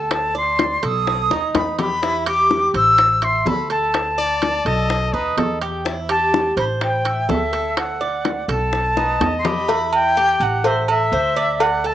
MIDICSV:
0, 0, Header, 1, 6, 480
1, 0, Start_track
1, 0, Key_signature, 1, "minor"
1, 0, Tempo, 478851
1, 111, Time_signature, 4, 2, 24, 8
1, 11972, End_track
2, 0, Start_track
2, 0, Title_t, "Flute"
2, 0, Program_c, 0, 73
2, 0, Note_on_c, 0, 81, 83
2, 121, Note_off_c, 0, 81, 0
2, 133, Note_on_c, 0, 81, 86
2, 346, Note_off_c, 0, 81, 0
2, 375, Note_on_c, 0, 84, 95
2, 855, Note_on_c, 0, 87, 112
2, 870, Note_off_c, 0, 84, 0
2, 1567, Note_on_c, 0, 83, 97
2, 1582, Note_off_c, 0, 87, 0
2, 1798, Note_off_c, 0, 83, 0
2, 1805, Note_on_c, 0, 83, 98
2, 2245, Note_off_c, 0, 83, 0
2, 2292, Note_on_c, 0, 86, 110
2, 2728, Note_off_c, 0, 86, 0
2, 2766, Note_on_c, 0, 88, 117
2, 3247, Note_on_c, 0, 84, 96
2, 3262, Note_off_c, 0, 88, 0
2, 3479, Note_on_c, 0, 83, 109
2, 3494, Note_off_c, 0, 84, 0
2, 3715, Note_off_c, 0, 83, 0
2, 3723, Note_on_c, 0, 81, 95
2, 5597, Note_off_c, 0, 81, 0
2, 6121, Note_on_c, 0, 81, 105
2, 6563, Note_off_c, 0, 81, 0
2, 6604, Note_on_c, 0, 83, 100
2, 6664, Note_off_c, 0, 83, 0
2, 6851, Note_on_c, 0, 79, 99
2, 7324, Note_on_c, 0, 76, 94
2, 7339, Note_off_c, 0, 79, 0
2, 7796, Note_off_c, 0, 76, 0
2, 7802, Note_on_c, 0, 78, 94
2, 8477, Note_off_c, 0, 78, 0
2, 8523, Note_on_c, 0, 81, 94
2, 9368, Note_off_c, 0, 81, 0
2, 9408, Note_on_c, 0, 84, 69
2, 9484, Note_on_c, 0, 83, 96
2, 9499, Note_off_c, 0, 84, 0
2, 9958, Note_off_c, 0, 83, 0
2, 9973, Note_on_c, 0, 79, 118
2, 10453, Note_on_c, 0, 78, 102
2, 10468, Note_off_c, 0, 79, 0
2, 10692, Note_on_c, 0, 76, 102
2, 10707, Note_off_c, 0, 78, 0
2, 10923, Note_off_c, 0, 76, 0
2, 10931, Note_on_c, 0, 76, 107
2, 11650, Note_on_c, 0, 78, 104
2, 11666, Note_off_c, 0, 76, 0
2, 11892, Note_on_c, 0, 81, 111
2, 11907, Note_off_c, 0, 78, 0
2, 11972, Note_off_c, 0, 81, 0
2, 11972, End_track
3, 0, Start_track
3, 0, Title_t, "Trumpet"
3, 0, Program_c, 1, 56
3, 4189, Note_on_c, 1, 74, 108
3, 4673, Note_on_c, 1, 75, 120
3, 4688, Note_off_c, 1, 74, 0
3, 5147, Note_on_c, 1, 71, 99
3, 5162, Note_off_c, 1, 75, 0
3, 5389, Note_off_c, 1, 71, 0
3, 5393, Note_on_c, 1, 69, 93
3, 5615, Note_off_c, 1, 69, 0
3, 5628, Note_on_c, 1, 67, 69
3, 5964, Note_off_c, 1, 67, 0
3, 8989, Note_on_c, 1, 71, 88
3, 9228, Note_on_c, 1, 75, 112
3, 9243, Note_off_c, 1, 71, 0
3, 9711, Note_off_c, 1, 75, 0
3, 11972, End_track
4, 0, Start_track
4, 0, Title_t, "Cuban tres"
4, 0, Program_c, 2, 25
4, 0, Note_on_c, 2, 69, 81
4, 335, Note_off_c, 2, 69, 0
4, 348, Note_on_c, 2, 74, 69
4, 815, Note_off_c, 2, 74, 0
4, 829, Note_on_c, 2, 69, 85
4, 1295, Note_off_c, 2, 69, 0
4, 1312, Note_on_c, 2, 63, 71
4, 1777, Note_off_c, 2, 63, 0
4, 1793, Note_on_c, 2, 67, 73
4, 2024, Note_off_c, 2, 67, 0
4, 2031, Note_on_c, 2, 64, 82
4, 2263, Note_off_c, 2, 64, 0
4, 2273, Note_on_c, 2, 67, 81
4, 2737, Note_off_c, 2, 67, 0
4, 2751, Note_on_c, 2, 72, 76
4, 3216, Note_off_c, 2, 72, 0
4, 3231, Note_on_c, 2, 76, 74
4, 3463, Note_off_c, 2, 76, 0
4, 3470, Note_on_c, 2, 69, 65
4, 3698, Note_off_c, 2, 69, 0
4, 3710, Note_on_c, 2, 69, 72
4, 4175, Note_off_c, 2, 69, 0
4, 4190, Note_on_c, 2, 74, 74
4, 4656, Note_off_c, 2, 74, 0
4, 4671, Note_on_c, 2, 69, 75
4, 5136, Note_off_c, 2, 69, 0
4, 5149, Note_on_c, 2, 63, 78
4, 5616, Note_off_c, 2, 63, 0
4, 5629, Note_on_c, 2, 67, 80
4, 5863, Note_off_c, 2, 67, 0
4, 5867, Note_on_c, 2, 64, 83
4, 6102, Note_off_c, 2, 64, 0
4, 6107, Note_on_c, 2, 67, 81
4, 6575, Note_off_c, 2, 67, 0
4, 6586, Note_on_c, 2, 72, 76
4, 7054, Note_off_c, 2, 72, 0
4, 7066, Note_on_c, 2, 76, 64
4, 7301, Note_off_c, 2, 76, 0
4, 7305, Note_on_c, 2, 69, 65
4, 7534, Note_off_c, 2, 69, 0
4, 7546, Note_on_c, 2, 69, 81
4, 8015, Note_off_c, 2, 69, 0
4, 8026, Note_on_c, 2, 74, 77
4, 8495, Note_off_c, 2, 74, 0
4, 8508, Note_on_c, 2, 69, 82
4, 8976, Note_off_c, 2, 69, 0
4, 8989, Note_on_c, 2, 63, 77
4, 9457, Note_off_c, 2, 63, 0
4, 9470, Note_on_c, 2, 67, 69
4, 9704, Note_off_c, 2, 67, 0
4, 9713, Note_on_c, 2, 64, 86
4, 10179, Note_off_c, 2, 64, 0
4, 10196, Note_on_c, 2, 67, 86
4, 10660, Note_off_c, 2, 67, 0
4, 10673, Note_on_c, 2, 72, 73
4, 10906, Note_off_c, 2, 72, 0
4, 10913, Note_on_c, 2, 69, 67
4, 11146, Note_off_c, 2, 69, 0
4, 11153, Note_on_c, 2, 72, 77
4, 11386, Note_off_c, 2, 72, 0
4, 11391, Note_on_c, 2, 74, 83
4, 11858, Note_off_c, 2, 74, 0
4, 11871, Note_on_c, 2, 69, 77
4, 11972, Note_off_c, 2, 69, 0
4, 11972, End_track
5, 0, Start_track
5, 0, Title_t, "Upright bass"
5, 0, Program_c, 3, 32
5, 0, Note_on_c, 3, 38, 89
5, 765, Note_off_c, 3, 38, 0
5, 830, Note_on_c, 3, 35, 89
5, 1277, Note_off_c, 3, 35, 0
5, 1306, Note_on_c, 3, 39, 72
5, 1531, Note_off_c, 3, 39, 0
5, 1547, Note_on_c, 3, 40, 81
5, 2684, Note_off_c, 3, 40, 0
5, 2745, Note_on_c, 3, 33, 90
5, 3428, Note_off_c, 3, 33, 0
5, 3464, Note_on_c, 3, 38, 89
5, 4603, Note_off_c, 3, 38, 0
5, 4661, Note_on_c, 3, 35, 87
5, 5112, Note_off_c, 3, 35, 0
5, 5145, Note_on_c, 3, 39, 77
5, 5371, Note_off_c, 3, 39, 0
5, 5384, Note_on_c, 3, 40, 78
5, 6524, Note_off_c, 3, 40, 0
5, 6582, Note_on_c, 3, 33, 91
5, 7267, Note_off_c, 3, 33, 0
5, 7305, Note_on_c, 3, 38, 81
5, 8445, Note_off_c, 3, 38, 0
5, 8503, Note_on_c, 3, 35, 88
5, 9188, Note_off_c, 3, 35, 0
5, 9226, Note_on_c, 3, 40, 85
5, 10366, Note_off_c, 3, 40, 0
5, 10425, Note_on_c, 3, 33, 89
5, 11109, Note_off_c, 3, 33, 0
5, 11144, Note_on_c, 3, 38, 92
5, 11972, Note_off_c, 3, 38, 0
5, 11972, End_track
6, 0, Start_track
6, 0, Title_t, "Drums"
6, 109, Note_on_c, 9, 65, 95
6, 111, Note_on_c, 9, 60, 77
6, 209, Note_off_c, 9, 65, 0
6, 211, Note_off_c, 9, 60, 0
6, 352, Note_on_c, 9, 60, 35
6, 452, Note_off_c, 9, 60, 0
6, 591, Note_on_c, 9, 65, 91
6, 594, Note_on_c, 9, 60, 64
6, 691, Note_off_c, 9, 65, 0
6, 694, Note_off_c, 9, 60, 0
6, 831, Note_on_c, 9, 65, 70
6, 834, Note_on_c, 9, 60, 32
6, 931, Note_off_c, 9, 65, 0
6, 934, Note_off_c, 9, 60, 0
6, 1076, Note_on_c, 9, 60, 66
6, 1177, Note_off_c, 9, 60, 0
6, 1313, Note_on_c, 9, 60, 69
6, 1414, Note_off_c, 9, 60, 0
6, 1551, Note_on_c, 9, 65, 84
6, 1553, Note_on_c, 9, 60, 91
6, 1651, Note_off_c, 9, 65, 0
6, 1653, Note_off_c, 9, 60, 0
6, 1790, Note_on_c, 9, 65, 61
6, 1792, Note_on_c, 9, 61, 98
6, 1890, Note_off_c, 9, 65, 0
6, 1892, Note_off_c, 9, 61, 0
6, 2035, Note_on_c, 9, 60, 64
6, 2135, Note_off_c, 9, 60, 0
6, 2269, Note_on_c, 9, 65, 102
6, 2276, Note_on_c, 9, 60, 33
6, 2370, Note_off_c, 9, 65, 0
6, 2376, Note_off_c, 9, 60, 0
6, 2513, Note_on_c, 9, 60, 66
6, 2613, Note_off_c, 9, 60, 0
6, 2751, Note_on_c, 9, 65, 67
6, 2756, Note_on_c, 9, 60, 36
6, 2851, Note_off_c, 9, 65, 0
6, 2856, Note_off_c, 9, 60, 0
6, 2989, Note_on_c, 9, 65, 71
6, 2993, Note_on_c, 9, 60, 66
6, 3089, Note_off_c, 9, 65, 0
6, 3093, Note_off_c, 9, 60, 0
6, 3227, Note_on_c, 9, 65, 86
6, 3231, Note_on_c, 9, 60, 34
6, 3328, Note_off_c, 9, 65, 0
6, 3331, Note_off_c, 9, 60, 0
6, 3468, Note_on_c, 9, 66, 65
6, 3477, Note_on_c, 9, 60, 35
6, 3477, Note_on_c, 9, 61, 81
6, 3568, Note_off_c, 9, 66, 0
6, 3577, Note_off_c, 9, 60, 0
6, 3577, Note_off_c, 9, 61, 0
6, 3709, Note_on_c, 9, 65, 62
6, 3809, Note_off_c, 9, 65, 0
6, 3949, Note_on_c, 9, 65, 94
6, 3954, Note_on_c, 9, 60, 72
6, 4050, Note_off_c, 9, 65, 0
6, 4054, Note_off_c, 9, 60, 0
6, 4198, Note_on_c, 9, 60, 35
6, 4298, Note_off_c, 9, 60, 0
6, 4429, Note_on_c, 9, 65, 84
6, 4437, Note_on_c, 9, 60, 59
6, 4530, Note_off_c, 9, 65, 0
6, 4537, Note_off_c, 9, 60, 0
6, 4670, Note_on_c, 9, 65, 68
6, 4674, Note_on_c, 9, 60, 36
6, 4771, Note_off_c, 9, 65, 0
6, 4774, Note_off_c, 9, 60, 0
6, 4912, Note_on_c, 9, 60, 66
6, 5012, Note_off_c, 9, 60, 0
6, 5151, Note_on_c, 9, 60, 33
6, 5251, Note_off_c, 9, 60, 0
6, 5389, Note_on_c, 9, 65, 90
6, 5389, Note_on_c, 9, 66, 71
6, 5394, Note_on_c, 9, 60, 31
6, 5394, Note_on_c, 9, 61, 88
6, 5489, Note_off_c, 9, 65, 0
6, 5489, Note_off_c, 9, 66, 0
6, 5495, Note_off_c, 9, 60, 0
6, 5495, Note_off_c, 9, 61, 0
6, 5628, Note_on_c, 9, 65, 70
6, 5729, Note_off_c, 9, 65, 0
6, 5873, Note_on_c, 9, 60, 74
6, 5973, Note_off_c, 9, 60, 0
6, 6106, Note_on_c, 9, 65, 93
6, 6116, Note_on_c, 9, 60, 34
6, 6207, Note_off_c, 9, 65, 0
6, 6216, Note_off_c, 9, 60, 0
6, 6355, Note_on_c, 9, 60, 69
6, 6455, Note_off_c, 9, 60, 0
6, 6590, Note_on_c, 9, 65, 74
6, 6595, Note_on_c, 9, 60, 32
6, 6690, Note_off_c, 9, 65, 0
6, 6695, Note_off_c, 9, 60, 0
6, 6829, Note_on_c, 9, 65, 68
6, 6830, Note_on_c, 9, 60, 64
6, 6929, Note_off_c, 9, 65, 0
6, 6930, Note_off_c, 9, 60, 0
6, 7070, Note_on_c, 9, 65, 94
6, 7072, Note_on_c, 9, 60, 34
6, 7171, Note_off_c, 9, 65, 0
6, 7172, Note_off_c, 9, 60, 0
6, 7312, Note_on_c, 9, 60, 32
6, 7312, Note_on_c, 9, 61, 83
6, 7314, Note_on_c, 9, 66, 63
6, 7412, Note_off_c, 9, 60, 0
6, 7412, Note_off_c, 9, 61, 0
6, 7414, Note_off_c, 9, 66, 0
6, 7550, Note_on_c, 9, 65, 61
6, 7650, Note_off_c, 9, 65, 0
6, 7790, Note_on_c, 9, 60, 70
6, 7791, Note_on_c, 9, 65, 100
6, 7890, Note_off_c, 9, 60, 0
6, 7891, Note_off_c, 9, 65, 0
6, 8031, Note_on_c, 9, 60, 36
6, 8132, Note_off_c, 9, 60, 0
6, 8269, Note_on_c, 9, 65, 78
6, 8271, Note_on_c, 9, 60, 63
6, 8369, Note_off_c, 9, 65, 0
6, 8371, Note_off_c, 9, 60, 0
6, 8512, Note_on_c, 9, 65, 68
6, 8515, Note_on_c, 9, 60, 34
6, 8612, Note_off_c, 9, 65, 0
6, 8615, Note_off_c, 9, 60, 0
6, 8749, Note_on_c, 9, 60, 62
6, 8849, Note_off_c, 9, 60, 0
6, 8992, Note_on_c, 9, 60, 71
6, 9092, Note_off_c, 9, 60, 0
6, 9233, Note_on_c, 9, 60, 80
6, 9233, Note_on_c, 9, 65, 81
6, 9233, Note_on_c, 9, 66, 69
6, 9333, Note_off_c, 9, 60, 0
6, 9333, Note_off_c, 9, 65, 0
6, 9333, Note_off_c, 9, 66, 0
6, 9470, Note_on_c, 9, 65, 62
6, 9471, Note_on_c, 9, 61, 101
6, 9571, Note_off_c, 9, 61, 0
6, 9571, Note_off_c, 9, 65, 0
6, 9707, Note_on_c, 9, 68, 86
6, 9711, Note_on_c, 9, 56, 119
6, 9807, Note_off_c, 9, 68, 0
6, 9811, Note_off_c, 9, 56, 0
6, 9950, Note_on_c, 9, 68, 110
6, 10050, Note_off_c, 9, 68, 0
6, 10193, Note_on_c, 9, 56, 80
6, 10294, Note_off_c, 9, 56, 0
6, 10431, Note_on_c, 9, 68, 70
6, 10531, Note_off_c, 9, 68, 0
6, 10668, Note_on_c, 9, 56, 105
6, 10669, Note_on_c, 9, 68, 95
6, 10768, Note_off_c, 9, 56, 0
6, 10769, Note_off_c, 9, 68, 0
6, 10909, Note_on_c, 9, 68, 108
6, 11009, Note_off_c, 9, 68, 0
6, 11152, Note_on_c, 9, 56, 72
6, 11253, Note_off_c, 9, 56, 0
6, 11393, Note_on_c, 9, 68, 66
6, 11493, Note_off_c, 9, 68, 0
6, 11630, Note_on_c, 9, 68, 107
6, 11631, Note_on_c, 9, 56, 112
6, 11730, Note_off_c, 9, 68, 0
6, 11731, Note_off_c, 9, 56, 0
6, 11972, End_track
0, 0, End_of_file